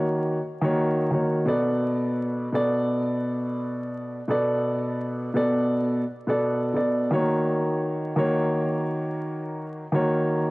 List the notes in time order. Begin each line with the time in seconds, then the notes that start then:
Already playing: D#3 A#3 F#4 C#5
0.61 D#3 A#3 F#4 C#5
1.11 D#3 A#3 F#4 C#5
1.45 B2 B3 A4 D5
2.52 B2 B3 A4 D5
4.28 B2 B3 A4 D5
5.34 B2 B3 A4 D5
6.27 B2 B3 A4 D5
6.74 B2 B3 A4 D5
7.11 D#3 A#3 F#4 C#5
8.16 D#3 A#3 F#4 C#5
9.92 D#3 A#3 F#4 C#5